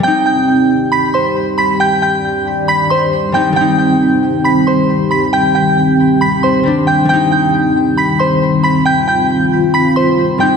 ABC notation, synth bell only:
X:1
M:4/4
L:1/8
Q:1/4=136
K:Cm
V:1 name="Synth bell"
[gg'] [gg']3 [=b=b'] [cc']2 [bb'] | [gg'] [gg']3 [=b=b'] [cc']2 [gg'] | [gg'] [gg']3 [=b=b'] [cc']2 [bb'] | [gg'] [gg']3 [=b=b'] [cc']2 [gg'] |
[gg'] [gg']3 [=b=b'] [cc']2 [bb'] | [gg'] [gg']3 [=b=b'] [cc']2 [gg'] |]